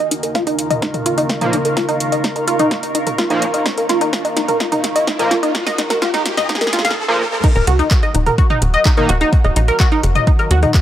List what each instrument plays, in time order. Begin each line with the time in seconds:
Already playing: ambient pad D#2 C#3 A#3 D#4 F4 A#4 G#5, riser
0.11 synth arpeggio sound D#4, ambient pad A#5, closed hi-hat
0.22 synth arpeggio sound A#4, ambient pad F5, closed hi-hat
0.28 ambient pad C#6
0.35 synth arpeggio sound F4, kick, snare, closed hi-hat
0.47 synth arpeggio sound D#4, closed hi-hat
0.59 closed hi-hat
0.70 synth arpeggio sound D#5, closed hi-hat, mid tom
0.82 synth arpeggio sound D#4, kick, snare, closed hi-hat
0.94 synth arpeggio sound A#4, closed hi-hat, mid tom
1.06 synth arpeggio sound F4, closed hi-hat
1.18 synth arpeggio sound D#4, closed hi-hat
1.29 kick, snare, closed hi-hat
1.41 analog polysynth A#2 F3 A#3, synth arpeggio sound D#5, closed hi-hat, mid tom
1.53 synth arpeggio sound D#4, closed hi-hat
1.65 synth arpeggio sound A#4, closed hi-hat
1.77 synth arpeggio sound F4, kick, snare, closed hi-hat
1.89 synth arpeggio sound D#4, closed hi-hat
2.00 closed hi-hat
2.12 synth arpeggio sound D#5, closed hi-hat
2.24 synth arpeggio sound D#4, kick, snare, closed hi-hat
2.36 synth arpeggio sound A#4, closed hi-hat
2.48 synth arpeggio sound F4, closed hi-hat
2.59 synth arpeggio sound D#4, closed hi-hat, mid tom
2.71 kick, snare, closed hi-hat
2.83 synth arpeggio sound D#5, closed hi-hat
2.95 synth arpeggio sound D#4, closed hi-hat
3.07 synth arpeggio sound A#4, closed hi-hat, mid tom
3.18 synth arpeggio sound F4, kick, snare, closed hi-hat
3.30 analog polysynth A#2 F3 A#3, synth arpeggio sound D#4, closed hi-hat
3.42 closed hi-hat
3.54 synth arpeggio sound D#5, closed hi-hat
3.66 synth arpeggio sound D#4, kick, snare, closed hi-hat
3.78 synth arpeggio sound A#4, closed hi-hat
3.89 synth arpeggio sound F4, snare, closed hi-hat
4.01 synth arpeggio sound D#4, closed hi-hat
4.13 kick, snare, closed hi-hat
4.25 synth arpeggio sound D#5, closed hi-hat
4.37 synth arpeggio sound D#4, snare, closed hi-hat
4.48 synth arpeggio sound A#4, closed hi-hat, mid tom
4.60 synth arpeggio sound F4, kick, snare, closed hi-hat
4.72 synth arpeggio sound D#4, closed hi-hat, mid tom
4.84 snare, closed hi-hat
4.96 synth arpeggio sound D#5, closed hi-hat
5.07 synth arpeggio sound D#4, kick, snare, closed hi-hat
5.19 analog polysynth A#2 F3 A#3, synth arpeggio sound A#4, closed hi-hat, mid tom
5.31 synth arpeggio sound F4, snare, closed hi-hat
5.43 synth arpeggio sound D#4, closed hi-hat
5.55 kick, snare, closed hi-hat
5.66 synth arpeggio sound D#5, snare, closed hi-hat
5.78 synth arpeggio sound D#4, snare, closed hi-hat
5.90 synth arpeggio sound A#4, snare, closed hi-hat
6.02 synth arpeggio sound F4, kick, snare, closed hi-hat
6.14 synth arpeggio sound D#4, snare, closed hi-hat
6.26 snare, closed hi-hat
6.37 synth arpeggio sound D#5, snare, closed hi-hat, mid tom
6.49 synth arpeggio sound D#4, kick, snare, closed hi-hat
6.55 snare
6.61 synth arpeggio sound A#4, snare, closed hi-hat
6.67 snare
6.73 synth arpeggio sound F4, snare, closed hi-hat
6.79 snare
6.85 synth arpeggio sound F5, snare, closed hi-hat, mid tom
6.91 snare
7.08 analog polysynth A#2 F3 A#3
7.44 ambient pad D#3 F#3 A#3 F#4, synth arpeggio sound D#4, kick, cross-stick, closed hi-hat, crash
7.56 analog synth bass D#1, synth arpeggio sound A#4, closed hi-hat
7.66 analog synth bass C#2, synth arpeggio sound F#4, ambient pad F#5, cross-stick, closed hi-hat
7.79 synth arpeggio sound D#4, closed hi-hat
7.91 kick, clap, closed hi-hat
8.03 synth arpeggio sound D#5, cross-stick, closed hi-hat
8.15 analog synth bass D#1, synth arpeggio sound D#4, closed hi-hat
8.26 synth arpeggio sound A#4, cross-stick, closed hi-hat, mid tom
8.38 synth arpeggio sound F#4, kick, closed hi-hat
8.50 synth arpeggio sound D#4, closed hi-hat, mid tom
8.62 analog synth bass D#1, cross-stick, closed hi-hat
8.74 synth arpeggio sound D#5, closed hi-hat
8.85 synth arpeggio sound D#4, kick, cross-stick, clap, closed hi-hat
8.97 analog polysynth D#3 A#3 D#4, synth arpeggio sound A#4, closed hi-hat, mid tom
9.09 analog synth bass D#1, synth arpeggio sound F#4, closed hi-hat
9.21 synth arpeggio sound D#4, cross-stick, closed hi-hat
9.33 kick, closed hi-hat
9.44 analog synth bass D#1, synth arpeggio sound D#5, cross-stick, closed hi-hat
9.56 analog synth bass A#1, synth arpeggio sound D#4, closed hi-hat
9.68 synth arpeggio sound A#4, closed hi-hat
9.80 synth arpeggio sound F#4, kick, cross-stick, clap, closed hi-hat
9.92 synth arpeggio sound D#4, closed hi-hat
10.03 analog synth bass F#1, cross-stick, closed hi-hat
10.15 synth arpeggio sound D#5, closed hi-hat, mid tom
10.27 synth arpeggio sound D#4, kick, closed hi-hat
10.39 synth arpeggio sound A#4, cross-stick, closed hi-hat
10.51 analog synth bass D#2, synth arpeggio sound F#4, closed hi-hat
10.63 synth arpeggio sound D#4, cross-stick, closed hi-hat, mid tom
10.74 kick, clap, closed hi-hat